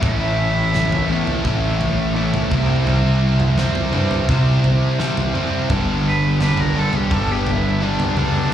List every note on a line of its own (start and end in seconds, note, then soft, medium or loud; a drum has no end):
0.01 1.18 A1 loud
0.01 0.72 A2 loud
0.01 0.72 E3 loud
0.01 0.72 A3 medium
0.01 0.72 C#4 loud
0.01 1.13 E4 loud
0.01 0.74 E4 loud
0.01 kick loud
0.01 floor tom loud
0.73 1.07 A2 medium
0.73 1.09 E3 medium
0.73 1.08 A3 loud
0.73 1.09 C#4 medium
0.73 1.10 E4 medium
0.73 snare medium
0.73 mid tom medium
0.92 floor tom medium
1.09 1.43 A2 medium
1.09 1.44 E3 medium
1.09 1.43 A3 medium
1.09 1.32 B3 medium
1.09 1.44 C#4 medium
1.09 1.45 E4 medium
1.27 1.45 A3 medium
1.27 floor tom medium
1.44 2.31 A1 loud
1.44 2.13 A2 medium
1.44 2.15 E3 loud
1.44 2.15 A3 medium
1.44 3.55 A3 loud
1.44 2.15 C#4 loud
1.44 2.16 E4 loud
1.44 kick loud
1.81 floor tom medium
2.15 2.48 A2 medium
2.15 2.51 E3 medium
2.15 2.49 A3 medium
2.15 2.49 C#4 medium
2.15 2.52 E4 medium
2.34 floor tom medium
2.51 3.66 C2 medium
2.51 2.85 C3 medium
2.51 2.87 G3 loud
2.51 2.86 C4 loud
2.51 2.88 E4 loud
2.51 kick loud
2.51 mid tom medium
2.86 3.57 C3 loud
2.86 3.58 G3 loud
2.86 3.58 C4 loud
2.86 3.59 E4 loud
2.86 floor tom medium
3.40 mid tom medium
3.58 3.92 C3 medium
3.58 3.94 G3 medium
3.58 3.93 C4 medium
3.58 3.94 E4 loud
3.58 snare medium
3.58 mid tom medium
3.75 floor tom loud
3.93 4.22 G2 medium
3.93 4.27 C3 medium
3.93 4.28 G3 medium
3.93 4.28 C4 medium
3.93 4.29 E4 loud
3.93 mid tom medium
4.11 floor tom medium
4.29 4.98 C3 loud
4.29 4.57 C3 medium
4.29 4.98 G3 medium
4.29 4.99 C4 loud
4.29 4.99 E4 loud
4.29 kick loud
4.64 floor tom medium
4.99 5.33 C3 medium
4.99 5.34 G3 loud
4.99 5.34 C4 medium
4.99 5.34 E4 loud
4.99 snare medium
5.17 floor tom medium
5.34 5.67 C3 loud
5.34 5.68 G3 loud
5.34 5.68 C4 loud
5.34 5.68 E4 loud
5.34 mid tom medium
5.69 6.84 G1 loud
5.69 6.39 G2 loud
5.69 6.39 D3 loud
5.69 6.40 G3 loud
5.69 6.40 B3 loud
5.69 6.41 D4 loud
5.69 kick loud
5.69 floor tom medium
6.08 6.23 B4 loud
6.40 6.74 G2 medium
6.40 6.74 D3 medium
6.40 6.74 G3 loud
6.40 6.75 B3 medium
6.40 6.76 D4 loud
6.40 6.61 B4 loud
6.40 snare medium
6.40 mid tom medium
6.57 6.80 A#4 loud
6.57 floor tom medium
6.75 7.09 G2 medium
6.75 7.09 D3 medium
6.75 7.10 G3 medium
6.75 7.10 B3 medium
6.75 7.11 D4 medium
6.75 6.98 A4 loud
6.93 7.16 G4 medium
6.93 floor tom medium
7.10 7.97 G1 loud
7.10 7.79 G2 medium
7.10 7.80 D3 loud
7.10 7.80 G3 medium
7.10 7.80 B3 loud
7.10 7.82 D4 loud
7.10 7.33 A4 loud
7.10 kick loud
7.32 7.51 G4 loud
7.47 7.86 E4 loud
7.47 floor tom medium
7.80 8.15 G2 medium
7.80 8.16 D3 medium
7.80 8.17 G3 loud
7.80 8.17 B3 loud
7.80 8.18 D4 loud
7.85 8.54 D4 loud
8.00 floor tom medium
8.17 8.45 C#2 medium
8.17 8.50 G2 loud
8.17 8.50 D3 medium
8.17 8.51 G3 loud
8.17 8.51 B3 loud
8.17 8.52 D4 medium
8.17 mid tom medium